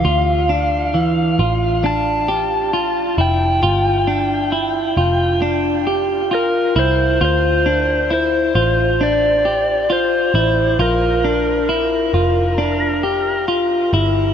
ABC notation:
X:1
M:4/4
L:1/8
Q:1/4=67
K:Dm
V:1 name="Electric slide guitar"
f4 a3 g- | g4 z2 B c | c2 c2 d2 c2 | B6 z2 |]
V:2 name="Clean electric guitar"
F D E, F D G F E | F D E F D G F E | F D E F D G F E | F D E F D G F E |]
V:3 name="Picked electric bass" clef=bass
D,,3 A,,,4 F,,, | G,,,3 F,,,4 C,, | D,,3 A,,,4 A,,, | B,,,3 F,,,4 G,,, |]